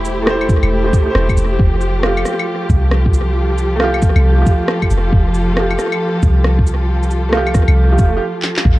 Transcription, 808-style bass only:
Already playing: E1
0.63 E1
1.15 E1
1.37 E1
1.59 F1
2.69 C2
4.16 C2
4.91 F1
5.13 F1
6.23 C2
7.68 C2
7.99 F1
8.65 A1

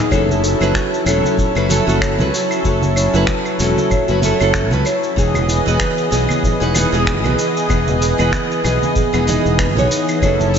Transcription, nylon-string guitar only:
0.11 F#3 C#4 E4 A4
0.60 F#3 C#4 E4 B4
1.06 F#3 C#4 E4 A4
1.55 F#3 C#4 E4 B4
1.69 F#3 C#4 E4 A4
1.87 F#3 C#4 E4 A4
2.19 F#3 C#4 E4 B4
2.64 F#3 C#4 E4 A4
3.14 F#3 C#4 E4 B4
3.59 F#3 C#4 E4 A4
4.08 F#3 C#4 E4 B4
4.22 F#3 C#4 E4 A4
4.40 F#3 C#4 E4 A4
4.71 F#3 C#4 E4 B4
5.16 E3 B3 D#4 G#4
5.66 E3 B3 B4 D#5
6.11 E3 B3 G#4 D#5
6.60 E3 B3 D#4 B4
6.74 E3 B3 D#4 G#4
6.92 E3 B3 D#4 G#4
7.24 E3 B3 D#4 B4
7.69 E3 B3 D#4 G#4
8.18 E3 B3 B4 D#5
8.64 E3 B3 G#4 D#5
9.13 E3 B3 D#4 B4
9.27 E3 B3 G#4 D#5
9.76 E3 B3 D#4 C#5
10.22 F#3 C#4 E4 A4

